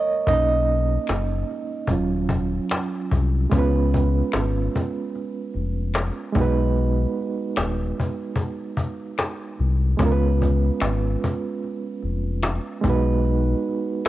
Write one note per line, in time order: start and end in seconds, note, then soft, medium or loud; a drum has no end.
0.00 0.29 A#4 medium
0.00 0.29 C#5 medium
0.00 0.24 D#5 medium
0.27 0.98 B1 loud
0.27 1.45 A#3 medium
0.27 1.45 C#4 soft
0.27 1.45 D#4 medium
0.27 1.05 D#5 medium
0.27 cajon bass loud
0.72 cajon slap soft
1.07 1.44 F#1 loud
1.07 finger snap medium
1.07 cajon slap loud
1.51 cajon slap soft
1.87 2.59 D#1 loud
1.87 3.48 F#3 medium
1.87 3.48 C#4 soft
1.87 3.48 F4 medium
1.87 cajon bass loud
2.29 cajon bass medium
2.69 finger snap medium
2.69 cajon slap loud
3.11 3.47 C2 medium
3.11 cajon bass medium
3.50 4.22 C#2 medium
3.50 6.30 G#3 medium
3.50 6.32 B3 medium
3.50 cajon bass loud
3.54 6.32 C#4 medium
3.54 6.34 F4 medium
3.59 6.35 B4 medium
3.94 cajon bass medium
4.32 4.69 G#1 loud
4.32 finger snap medium
4.32 cajon slap loud
4.76 cajon bass medium
5.16 cajon slap soft
5.54 6.11 F1 loud
5.54 cajon slap soft
5.94 finger snap medium
5.94 cajon slap loud
6.32 7.06 B1 loud
6.32 9.54 G#3 medium
6.32 9.55 B3 medium
6.32 cajon bass loud
6.37 9.56 D#4 medium
6.37 9.57 F#4 medium
6.41 9.58 B4 medium
6.76 cajon slap soft
7.20 cajon slap soft
7.56 7.93 D#1 loud
7.56 finger snap medium
7.56 cajon slap loud
8.00 cajon bass medium
8.35 cajon bass loud
8.77 cajon bass medium
9.18 finger snap medium
9.18 cajon slap loud
9.59 9.95 C2 loud
9.59 cajon slap soft
9.97 10.71 C#2 loud
9.97 12.78 G#3 medium
9.97 12.79 B3 medium
9.97 12.80 C#4 medium
9.97 cajon bass loud
10.03 12.81 F4 medium
10.03 10.11 A#4 medium
10.12 12.86 B4 medium
10.42 cajon bass medium
10.80 11.17 G#1 loud
10.80 finger snap medium
10.80 cajon slap loud
11.24 cajon bass medium
11.64 cajon slap soft
12.02 12.59 F1 medium
12.02 cajon slap soft
12.43 finger snap medium
12.43 cajon slap loud
12.81 13.55 B1 loud
12.81 14.09 G#3 medium
12.81 14.09 B3 medium
12.81 14.09 D#4 medium
12.81 cajon bass medium
12.88 14.09 F#4 medium
12.88 14.09 B4 medium
13.25 cajon slap soft
13.69 cajon slap soft
14.05 finger snap medium